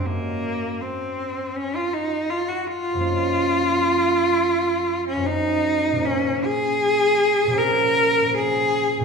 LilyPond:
<<
  \new Staff \with { instrumentName = "Cello" } { \time 4/4 \key bes \mixolydian \tempo 4 = 80 bes4 c'4 des'16 f'16 ees'8 f'16 ges'16 f'8~ | f'2~ f'8. des'16 ees'4 | des'8 aes'4. bes'4 aes'4 | }
  \new Staff \with { instrumentName = "Harp" } { \time 4/4 \key bes \mixolydian <ges, ges aes des' ges'>1 | <ges, f bes des' ees'>2. <ges, f bes des' ees'>4 | <bes, f bes des' f'>2 <bes, f bes des' f'>4 <bes, f bes des' f'>4 | }
>>